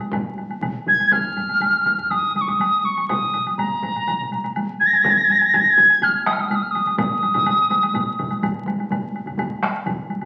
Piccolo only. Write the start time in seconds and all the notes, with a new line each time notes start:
0.88 G#6
1.06 G#6
1.12 F6
2.11 D#6
2.36 D#6
2.41 C#6
2.49 D#6
2.85 C#6
3.08 D#6
3.58 A#5
4.80 G#6
4.87 A#6
4.94 G#6
5.02 A#6
5.10 G#6
5.17 A#6
5.24 G#6
5.32 A#6
5.39 G#6
5.46 A#6
5.53 G#6
5.60 A#6
5.70 G#6
6.03 F6
6.26 D#6
6.33 F6
6.41 D#6
6.48 F6
6.55 D#6
6.62 F6
6.71 D#6
6.99 D#6